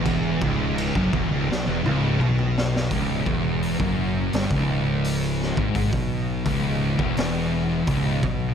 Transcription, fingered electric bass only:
X:1
M:4/4
L:1/16
Q:1/4=84
K:C#m
V:1 name="Fingered electric bass" clef=bass
E,,,2 C,,,3 F,,, E,,, C,,, B,,, E,,, C,,,2 B,,,4 | C,,,2 E,,,3 F,,,3 =G,,, C,,,6 ^G,,,- | G,,, B,,,3 C,,,3 E,,,4- E,,, C,,,2 B,,,2 |]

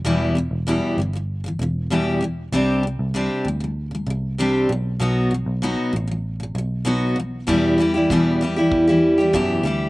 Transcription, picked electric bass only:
X:1
M:4/4
L:1/16
Q:1/4=97
K:Em
V:1 name="Picked electric bass" clef=bass
E,,,3 E,,,2 z G,,,4 E,,,6 | C,,3 C,,2 z D,,4 C,,4 B,,,2 | B,,,3 B,,,2 z A,,,4 B,,,6 | E,,4 E,,4 E,,4 F,,2 D,,2 |]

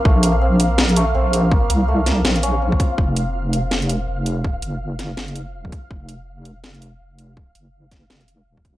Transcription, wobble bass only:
X:1
M:4/4
L:1/8
Q:"Swing 16ths" 1/4=164
K:Ebdor
V:1 name="Wobble bass" clef=bass
B,,,6 B,,,2- | B,,, C,,3 B,,,3 z | F,,,6 F,,,2- | F,,, G,,,3 G,,,3 z |
F,,,6 F,,,2- | F,,, G,,,3 F,,,2 E,,,2 |]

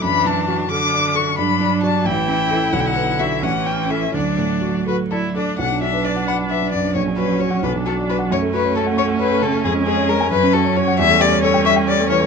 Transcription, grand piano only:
X:1
M:6/8
L:1/16
Q:3/8=89
K:D
V:1 name="Grand piano"
F,,2 F,2 F2 A2 d2 A2 | G,,2 D2 [Fd]2 A,,,2 C2 [EA]2 | B,,,2 B,2 [DF]2 A,,,2 C2 [EA]2 | D,,2 A,,2 F2 A2 d2 A2 |
[K:Bm] B,,, D F B d f b f B D F,, D | ^A,,, C F c F f B,,, F, F d F f | F,, A, F c A f c' f c A, C, A, | ^E,, C ^G c G ^g F,, C F c F f |
[K:Amix] E,, A, G c A g c' g c A, E, A, |]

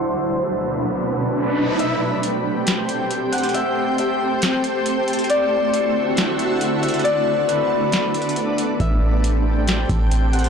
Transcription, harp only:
X:1
M:4/4
L:1/8
Q:1/4=137
K:Ador
V:1 name="Harp"
z8 | e6- e f | e2 e6 | d6- d e |
d2 B6 | e6- e f |]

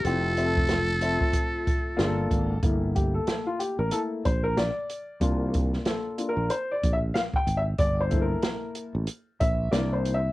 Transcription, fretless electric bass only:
X:1
M:4/4
L:1/16
Q:"Swing 16ths" 1/4=93
K:Gdor
V:1 name="Fretless electric bass" clef=bass
F,,,6- F,,, z4 z G,,,2 _A,,,2 | G,,,4 z3 A,,, z2 B,,,3 z3 | C,,4 z3 B,,, z2 B,,,2 z2 _A,,,2 | G,,,4 z3 A,,, z2 B,,,2 C,,4 |]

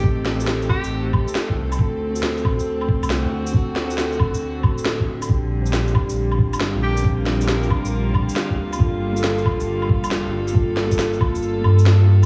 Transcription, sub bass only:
X:1
M:4/4
L:1/16
Q:"Swing 16ths" 1/4=137
K:Gm
V:1 name="Sub bass" clef=bass
A,,,6 E,,, A,,,4 z3 C,,2 | D,,6 A,,, D,,4 C,,2 D,,3- | D,,6 A,,, D,,3 D,,,6 | B,,,6 F,,, B,,,4 G,,,2 B,,,3- |
B,,,6 F,,, B,,,4 z3 D,,2 | G,,,6 D,, G,,,4 F,,,2 G,,,3- | G,,,6 D,, G,,,3 G,,6 |]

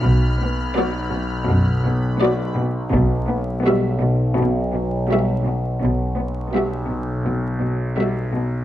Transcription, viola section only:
X:1
M:4/4
L:1/8
Q:1/4=83
K:Edor
V:1 name="Viola section"
z2 [F,F]2 z2 [F,F]2 | z2 [G,F]2 z2 [G,F]2 | z2 [G,F]2 z2 [G,F]2 |]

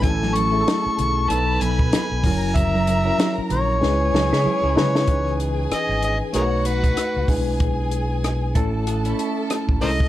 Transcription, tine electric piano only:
X:1
M:4/4
L:1/16
Q:"Swing 16ths" 1/4=95
K:C#m
V:1 name="Tine electric piano"
[A,CEA]2 z [A,CEGA]4- [A,CEGA] [F,B,DA]4- [F,B,DA] z [F,CE^A]2- | [F,CE^A]2 z [F,CEA]4- [F,CEA] [G,CEB]4- [G,CEB] z [G,CEB]2 | [E,CDB]6 z2 [A,DFB]4- [A,DFB] z [G,=DEB]2- | [G,=DEB]4 z2 [A,CEA]6 z2 [G,CEA]2 |]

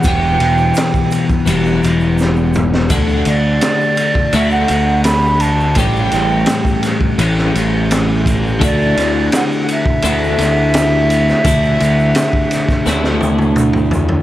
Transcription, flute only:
X:1
M:4/4
L:1/16
Q:1/4=84
K:D
V:1 name="Flute"
g6 z8 z2 | z2 d6 e f3 b2 a2 | g6 z8 z2 | d4 f2 e8- e2- |
e12 z4 |]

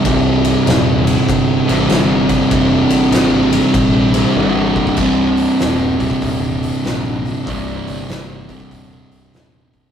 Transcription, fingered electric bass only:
X:1
M:4/4
L:1/8
Q:"Swing" 1/4=97
K:Cm
V:1 name="Fingered electric bass" clef=bass
C,,,2 E,,,2 G,,, A,,, G,,,2 | F,,, G,,, A,,,2 B,,,2 G,,,2 | C,,,2 E,,,2 E,,,2 B,,,2 | C,,, G,,, G,,,2 E,,, C,,, E,,,2 |]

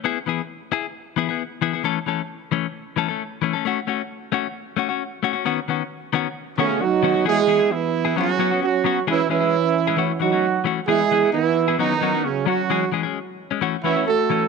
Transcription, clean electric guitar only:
X:1
M:4/4
L:1/16
Q:1/4=133
K:E
V:1 name="Clean electric guitar"
[B,EG] z [E,B,EG] z3 [EG] z3 [E,B,EG] [B,EG] z2 [E,B,EG] [B,EG] | [E,A,CA] z [E,A,CA] z3 [E,A,C] z3 [E,A,CA] [A,CA] z2 [E,A,C] [A,CA] | [A,CF] z [A,CF] z3 [A,CF] z3 [A,CF] [CF] z2 [A,CF] [CF] | [D,B,CF] z [D,B,CF] z3 [D,B,CF] z3 [D,B,CF] [B,CF] z2 [D,B,CF] [B,CF] |
[E,B,EG] z [E,B,EG] [B,EG] z3 [B,EG] [F,B,CF] z [F,B,CF] [B,CF] z2 [F,B,CF] z | [E,G,CG] z [E,G,CG] [G,CG] z3 [G,CG] [E,A,CF] z [E,F] [A,CF] z2 [E,A,CF] z | [E,B,EG] z [E,B,EG] [B,EG] z3 [B,EG] [F,B,CF] z [F,B,CF] [B,CF] z2 [F,CF] z | [E,G,CG] z [E,G,CG] [G,CG] z3 [G,C] [E,A,CF] z [E,A,CF] [A,CF] z2 [E,A,C] z |]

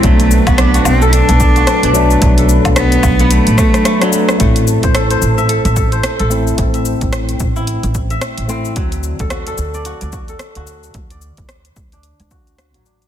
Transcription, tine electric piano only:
X:1
M:4/4
L:1/16
Q:"Swing 16ths" 1/4=110
K:Ador
V:1 name="Tine electric piano"
[F,A,D]12- [F,A,D]2 [F,A,D]2 | [F,A,D]12- [F,A,D] [F,A,D]3 | [A,CE]12- [A,CE]2 [A,CE]2 | [A,CE]12- [A,CE]2 [A,CE]2 |
z16 | z16 |]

